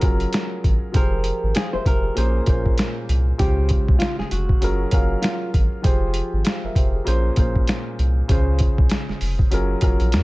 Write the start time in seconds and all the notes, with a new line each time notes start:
Already playing: C#4 F4 G#4 A#4
0.00 F#1 F#3 C#4 F4 G#4, kick, closed hi-hat
0.04 A#4
0.20 closed hi-hat
0.33 snare, closed hi-hat
0.64 G#1, kick, closed hi-hat
0.92 F1 F3 F4 G4 G#4 A#4 C5, kick, closed hi-hat
1.24 closed hi-hat
1.43 G#1
1.55 G#4 C5 F5, snare, closed hi-hat
1.73 F1 A#4 C5 E5
1.86 F1 G4 A#4 C5, kick, closed hi-hat
2.04 G#4
2.14 A#1 A#2 A#3 C#4 G#4 C5, closed hi-hat
2.46 A#1 A#2 A#3 C#4 G#4 C5, kick, closed hi-hat
2.66 kick
2.78 snare, closed hi-hat
3.09 C2, closed hi-hat
3.38 C#2 C#3 G#3 C#4 F4 G4 C5, kick, closed hi-hat
3.69 kick, closed hi-hat
3.88 C2, kick
3.99 F4, snare, closed hi-hat
4.19 F1 G#4, snare
4.31 F1 F#4, closed hi-hat
4.49 kick
4.61 F#1 F#3 C#4 F4 G#4 A#4, closed hi-hat
4.90 F#1 F#3 C#4 G#4 A#4 F5, kick, closed hi-hat
5.22 F4, snare, closed hi-hat
5.54 G#1, kick, closed hi-hat
5.82 F1 F3 F4 G4 G#4 C5, kick, closed hi-hat
6.14 closed hi-hat
6.33 G#1
6.44 C5 F5, snare, closed hi-hat
6.64 F1 A#4 E5
6.76 F1 G4 C5, kick, closed hi-hat
6.94 G#4
7.04 A#1 A#2 A#3 C#4 G#4 C5, closed hi-hat
7.36 A#1 A#2 A#3 C#4 G#4 C5, kick, closed hi-hat
7.56 kick
7.67 snare, closed hi-hat
7.99 C2, closed hi-hat
8.28 C#2 C#3 C#4 F4 G#4 C5, kick, closed hi-hat
8.59 kick, closed hi-hat
8.78 C2, kick
8.90 snare, closed hi-hat
9.09 F1, snare
9.21 F1, open hi-hat
9.39 kick
9.51 F#1 F#3 C#4 F4 G#4 A#4, closed hi-hat
9.80 F#1 F#3 C#4 F4 G#4 A#4, kick, closed hi-hat
10.00 A#1, closed hi-hat
10.12 F#2, snare, closed hi-hat